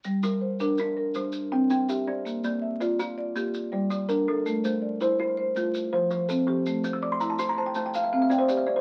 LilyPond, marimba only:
\new Staff \with { instrumentName = "Marimba" } { \time 12/8 \key g \dorian \tempo 4. = 109 << { r8 bes'8 c''4 bes'4 c''4. g''4 d''8~ | d''8 d''8 e''4 d''4 g'4. d''4 a'8~ | a'8 c''8 d''4 c''4 f'4. c''4 g'8~ | g'8 c''8 d''4 c''4 c''4. g''4 d''8 | } \\ { g4 r8 d'4 bes'8 r4 c'4 g'4 | bes4 r8 f'4 d''8 r4 g4 d'4 | a4 r8 e'4 c''8 r4 f4 c'4 | a4 r8 e'4 c''8 r4 c'4 g'4 | } >> }